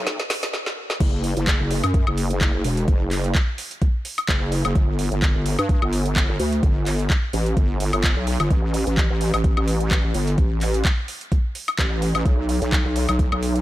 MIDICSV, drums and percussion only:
0, 0, Header, 1, 2, 480
1, 0, Start_track
1, 0, Tempo, 468750
1, 1029, Time_signature, 4, 2, 24, 8
1, 13941, End_track
2, 0, Start_track
2, 0, Title_t, "Drums"
2, 68, Note_on_c, 9, 36, 122
2, 68, Note_on_c, 9, 38, 106
2, 68, Note_on_c, 9, 42, 54
2, 170, Note_off_c, 9, 36, 0
2, 170, Note_off_c, 9, 38, 0
2, 170, Note_off_c, 9, 42, 0
2, 200, Note_on_c, 9, 38, 88
2, 303, Note_off_c, 9, 38, 0
2, 308, Note_on_c, 9, 38, 109
2, 308, Note_on_c, 9, 46, 113
2, 410, Note_off_c, 9, 38, 0
2, 410, Note_off_c, 9, 46, 0
2, 440, Note_on_c, 9, 38, 94
2, 440, Note_on_c, 9, 42, 65
2, 543, Note_off_c, 9, 38, 0
2, 543, Note_off_c, 9, 42, 0
2, 548, Note_on_c, 9, 38, 65
2, 650, Note_off_c, 9, 38, 0
2, 680, Note_on_c, 9, 38, 66
2, 782, Note_off_c, 9, 38, 0
2, 921, Note_on_c, 9, 38, 81
2, 1023, Note_off_c, 9, 38, 0
2, 1028, Note_on_c, 9, 36, 124
2, 1028, Note_on_c, 9, 42, 55
2, 1028, Note_on_c, 9, 49, 104
2, 1130, Note_off_c, 9, 42, 0
2, 1130, Note_off_c, 9, 49, 0
2, 1131, Note_off_c, 9, 36, 0
2, 1268, Note_on_c, 9, 46, 105
2, 1370, Note_off_c, 9, 46, 0
2, 1400, Note_on_c, 9, 42, 72
2, 1503, Note_off_c, 9, 42, 0
2, 1508, Note_on_c, 9, 36, 111
2, 1508, Note_on_c, 9, 42, 57
2, 1511, Note_on_c, 9, 39, 127
2, 1610, Note_off_c, 9, 42, 0
2, 1611, Note_off_c, 9, 36, 0
2, 1614, Note_off_c, 9, 39, 0
2, 1747, Note_on_c, 9, 46, 107
2, 1850, Note_off_c, 9, 46, 0
2, 1880, Note_on_c, 9, 42, 71
2, 1880, Note_on_c, 9, 76, 62
2, 1982, Note_off_c, 9, 42, 0
2, 1982, Note_off_c, 9, 76, 0
2, 1988, Note_on_c, 9, 36, 115
2, 1988, Note_on_c, 9, 42, 59
2, 2090, Note_off_c, 9, 36, 0
2, 2090, Note_off_c, 9, 42, 0
2, 2120, Note_on_c, 9, 76, 64
2, 2222, Note_off_c, 9, 76, 0
2, 2227, Note_on_c, 9, 46, 106
2, 2330, Note_off_c, 9, 46, 0
2, 2360, Note_on_c, 9, 42, 71
2, 2463, Note_off_c, 9, 42, 0
2, 2468, Note_on_c, 9, 36, 105
2, 2468, Note_on_c, 9, 42, 57
2, 2471, Note_on_c, 9, 39, 127
2, 2570, Note_off_c, 9, 36, 0
2, 2571, Note_off_c, 9, 42, 0
2, 2574, Note_off_c, 9, 39, 0
2, 2708, Note_on_c, 9, 46, 109
2, 2810, Note_off_c, 9, 46, 0
2, 2840, Note_on_c, 9, 42, 72
2, 2942, Note_off_c, 9, 42, 0
2, 2947, Note_on_c, 9, 42, 57
2, 2948, Note_on_c, 9, 36, 127
2, 3050, Note_off_c, 9, 36, 0
2, 3050, Note_off_c, 9, 42, 0
2, 3188, Note_on_c, 9, 46, 101
2, 3191, Note_on_c, 9, 39, 39
2, 3290, Note_off_c, 9, 46, 0
2, 3293, Note_off_c, 9, 39, 0
2, 3320, Note_on_c, 9, 42, 67
2, 3422, Note_off_c, 9, 42, 0
2, 3427, Note_on_c, 9, 42, 56
2, 3428, Note_on_c, 9, 36, 115
2, 3431, Note_on_c, 9, 39, 126
2, 3530, Note_off_c, 9, 36, 0
2, 3530, Note_off_c, 9, 42, 0
2, 3533, Note_off_c, 9, 39, 0
2, 3667, Note_on_c, 9, 46, 114
2, 3770, Note_off_c, 9, 46, 0
2, 3800, Note_on_c, 9, 42, 70
2, 3902, Note_off_c, 9, 42, 0
2, 3907, Note_on_c, 9, 42, 57
2, 3908, Note_on_c, 9, 36, 122
2, 4009, Note_off_c, 9, 42, 0
2, 4011, Note_off_c, 9, 36, 0
2, 4147, Note_on_c, 9, 46, 111
2, 4249, Note_off_c, 9, 46, 0
2, 4280, Note_on_c, 9, 42, 68
2, 4280, Note_on_c, 9, 76, 60
2, 4383, Note_off_c, 9, 42, 0
2, 4383, Note_off_c, 9, 76, 0
2, 4388, Note_on_c, 9, 42, 54
2, 4389, Note_on_c, 9, 36, 108
2, 4391, Note_on_c, 9, 39, 127
2, 4491, Note_off_c, 9, 36, 0
2, 4491, Note_off_c, 9, 42, 0
2, 4494, Note_off_c, 9, 39, 0
2, 4628, Note_on_c, 9, 46, 104
2, 4730, Note_off_c, 9, 46, 0
2, 4761, Note_on_c, 9, 42, 69
2, 4761, Note_on_c, 9, 76, 58
2, 4863, Note_off_c, 9, 42, 0
2, 4863, Note_off_c, 9, 76, 0
2, 4868, Note_on_c, 9, 42, 50
2, 4869, Note_on_c, 9, 36, 127
2, 4970, Note_off_c, 9, 42, 0
2, 4971, Note_off_c, 9, 36, 0
2, 5108, Note_on_c, 9, 46, 104
2, 5210, Note_off_c, 9, 46, 0
2, 5241, Note_on_c, 9, 42, 69
2, 5343, Note_off_c, 9, 42, 0
2, 5348, Note_on_c, 9, 42, 50
2, 5349, Note_on_c, 9, 36, 120
2, 5351, Note_on_c, 9, 39, 122
2, 5450, Note_off_c, 9, 42, 0
2, 5452, Note_off_c, 9, 36, 0
2, 5453, Note_off_c, 9, 39, 0
2, 5588, Note_on_c, 9, 46, 112
2, 5690, Note_off_c, 9, 46, 0
2, 5721, Note_on_c, 9, 42, 66
2, 5721, Note_on_c, 9, 76, 62
2, 5823, Note_off_c, 9, 42, 0
2, 5823, Note_off_c, 9, 76, 0
2, 5829, Note_on_c, 9, 36, 122
2, 5829, Note_on_c, 9, 42, 53
2, 5931, Note_off_c, 9, 42, 0
2, 5932, Note_off_c, 9, 36, 0
2, 5961, Note_on_c, 9, 76, 63
2, 6064, Note_off_c, 9, 76, 0
2, 6069, Note_on_c, 9, 46, 112
2, 6171, Note_off_c, 9, 46, 0
2, 6201, Note_on_c, 9, 42, 67
2, 6304, Note_off_c, 9, 42, 0
2, 6308, Note_on_c, 9, 42, 52
2, 6309, Note_on_c, 9, 36, 112
2, 6312, Note_on_c, 9, 39, 127
2, 6411, Note_off_c, 9, 42, 0
2, 6412, Note_off_c, 9, 36, 0
2, 6414, Note_off_c, 9, 39, 0
2, 6549, Note_on_c, 9, 46, 109
2, 6651, Note_off_c, 9, 46, 0
2, 6681, Note_on_c, 9, 42, 63
2, 6784, Note_off_c, 9, 42, 0
2, 6790, Note_on_c, 9, 36, 125
2, 6790, Note_on_c, 9, 42, 51
2, 6892, Note_off_c, 9, 36, 0
2, 6892, Note_off_c, 9, 42, 0
2, 7029, Note_on_c, 9, 46, 105
2, 7033, Note_on_c, 9, 39, 35
2, 7132, Note_off_c, 9, 46, 0
2, 7135, Note_off_c, 9, 39, 0
2, 7162, Note_on_c, 9, 42, 64
2, 7264, Note_off_c, 9, 42, 0
2, 7269, Note_on_c, 9, 36, 116
2, 7270, Note_on_c, 9, 42, 49
2, 7273, Note_on_c, 9, 39, 121
2, 7372, Note_off_c, 9, 36, 0
2, 7372, Note_off_c, 9, 42, 0
2, 7375, Note_off_c, 9, 39, 0
2, 7509, Note_on_c, 9, 46, 107
2, 7612, Note_off_c, 9, 46, 0
2, 7642, Note_on_c, 9, 42, 64
2, 7745, Note_off_c, 9, 42, 0
2, 7749, Note_on_c, 9, 36, 114
2, 7750, Note_on_c, 9, 42, 53
2, 7852, Note_off_c, 9, 36, 0
2, 7852, Note_off_c, 9, 42, 0
2, 7989, Note_on_c, 9, 46, 108
2, 8091, Note_off_c, 9, 46, 0
2, 8121, Note_on_c, 9, 42, 64
2, 8121, Note_on_c, 9, 76, 61
2, 8224, Note_off_c, 9, 42, 0
2, 8224, Note_off_c, 9, 76, 0
2, 8229, Note_on_c, 9, 36, 106
2, 8230, Note_on_c, 9, 42, 53
2, 8233, Note_on_c, 9, 39, 124
2, 8332, Note_off_c, 9, 36, 0
2, 8332, Note_off_c, 9, 42, 0
2, 8335, Note_off_c, 9, 39, 0
2, 8469, Note_on_c, 9, 46, 104
2, 8571, Note_off_c, 9, 46, 0
2, 8601, Note_on_c, 9, 42, 63
2, 8601, Note_on_c, 9, 76, 59
2, 8704, Note_off_c, 9, 42, 0
2, 8704, Note_off_c, 9, 76, 0
2, 8709, Note_on_c, 9, 36, 123
2, 8709, Note_on_c, 9, 42, 51
2, 8812, Note_off_c, 9, 36, 0
2, 8812, Note_off_c, 9, 42, 0
2, 8949, Note_on_c, 9, 46, 108
2, 9052, Note_off_c, 9, 46, 0
2, 9081, Note_on_c, 9, 42, 65
2, 9183, Note_off_c, 9, 42, 0
2, 9189, Note_on_c, 9, 36, 114
2, 9189, Note_on_c, 9, 42, 50
2, 9192, Note_on_c, 9, 39, 115
2, 9291, Note_off_c, 9, 42, 0
2, 9292, Note_off_c, 9, 36, 0
2, 9295, Note_off_c, 9, 39, 0
2, 9429, Note_on_c, 9, 46, 106
2, 9531, Note_off_c, 9, 46, 0
2, 9561, Note_on_c, 9, 42, 65
2, 9561, Note_on_c, 9, 76, 65
2, 9664, Note_off_c, 9, 42, 0
2, 9664, Note_off_c, 9, 76, 0
2, 9669, Note_on_c, 9, 36, 110
2, 9669, Note_on_c, 9, 42, 54
2, 9771, Note_off_c, 9, 42, 0
2, 9772, Note_off_c, 9, 36, 0
2, 9801, Note_on_c, 9, 76, 64
2, 9903, Note_off_c, 9, 76, 0
2, 9908, Note_on_c, 9, 46, 106
2, 10010, Note_off_c, 9, 46, 0
2, 10040, Note_on_c, 9, 42, 63
2, 10143, Note_off_c, 9, 42, 0
2, 10147, Note_on_c, 9, 42, 53
2, 10149, Note_on_c, 9, 36, 104
2, 10151, Note_on_c, 9, 39, 113
2, 10250, Note_off_c, 9, 42, 0
2, 10252, Note_off_c, 9, 36, 0
2, 10253, Note_off_c, 9, 39, 0
2, 10387, Note_on_c, 9, 46, 101
2, 10490, Note_off_c, 9, 46, 0
2, 10520, Note_on_c, 9, 42, 66
2, 10623, Note_off_c, 9, 42, 0
2, 10627, Note_on_c, 9, 42, 53
2, 10629, Note_on_c, 9, 36, 124
2, 10730, Note_off_c, 9, 42, 0
2, 10731, Note_off_c, 9, 36, 0
2, 10868, Note_on_c, 9, 46, 105
2, 10871, Note_on_c, 9, 39, 34
2, 10970, Note_off_c, 9, 46, 0
2, 10973, Note_off_c, 9, 39, 0
2, 11001, Note_on_c, 9, 42, 70
2, 11103, Note_off_c, 9, 42, 0
2, 11108, Note_on_c, 9, 42, 52
2, 11109, Note_on_c, 9, 36, 111
2, 11111, Note_on_c, 9, 39, 115
2, 11210, Note_off_c, 9, 42, 0
2, 11211, Note_off_c, 9, 36, 0
2, 11214, Note_off_c, 9, 39, 0
2, 11348, Note_on_c, 9, 46, 101
2, 11450, Note_off_c, 9, 46, 0
2, 11480, Note_on_c, 9, 42, 66
2, 11583, Note_off_c, 9, 42, 0
2, 11589, Note_on_c, 9, 36, 113
2, 11589, Note_on_c, 9, 42, 55
2, 11691, Note_off_c, 9, 42, 0
2, 11692, Note_off_c, 9, 36, 0
2, 11828, Note_on_c, 9, 46, 103
2, 11930, Note_off_c, 9, 46, 0
2, 11961, Note_on_c, 9, 42, 67
2, 11961, Note_on_c, 9, 76, 69
2, 12063, Note_off_c, 9, 42, 0
2, 12063, Note_off_c, 9, 76, 0
2, 12069, Note_on_c, 9, 36, 101
2, 12069, Note_on_c, 9, 42, 53
2, 12072, Note_on_c, 9, 39, 120
2, 12171, Note_off_c, 9, 36, 0
2, 12171, Note_off_c, 9, 42, 0
2, 12174, Note_off_c, 9, 39, 0
2, 12309, Note_on_c, 9, 46, 95
2, 12411, Note_off_c, 9, 46, 0
2, 12441, Note_on_c, 9, 42, 64
2, 12441, Note_on_c, 9, 76, 67
2, 12543, Note_off_c, 9, 42, 0
2, 12543, Note_off_c, 9, 76, 0
2, 12549, Note_on_c, 9, 36, 120
2, 12549, Note_on_c, 9, 42, 54
2, 12651, Note_off_c, 9, 36, 0
2, 12651, Note_off_c, 9, 42, 0
2, 12789, Note_on_c, 9, 46, 97
2, 12891, Note_off_c, 9, 46, 0
2, 12921, Note_on_c, 9, 42, 71
2, 13024, Note_off_c, 9, 42, 0
2, 13029, Note_on_c, 9, 36, 102
2, 13029, Note_on_c, 9, 42, 54
2, 13032, Note_on_c, 9, 39, 118
2, 13131, Note_off_c, 9, 36, 0
2, 13131, Note_off_c, 9, 42, 0
2, 13135, Note_off_c, 9, 39, 0
2, 13268, Note_on_c, 9, 46, 104
2, 13371, Note_off_c, 9, 46, 0
2, 13401, Note_on_c, 9, 42, 72
2, 13401, Note_on_c, 9, 76, 66
2, 13503, Note_off_c, 9, 42, 0
2, 13503, Note_off_c, 9, 76, 0
2, 13508, Note_on_c, 9, 42, 59
2, 13509, Note_on_c, 9, 36, 108
2, 13611, Note_off_c, 9, 36, 0
2, 13611, Note_off_c, 9, 42, 0
2, 13641, Note_on_c, 9, 76, 70
2, 13744, Note_off_c, 9, 76, 0
2, 13748, Note_on_c, 9, 46, 105
2, 13851, Note_off_c, 9, 46, 0
2, 13881, Note_on_c, 9, 42, 67
2, 13941, Note_off_c, 9, 42, 0
2, 13941, End_track
0, 0, End_of_file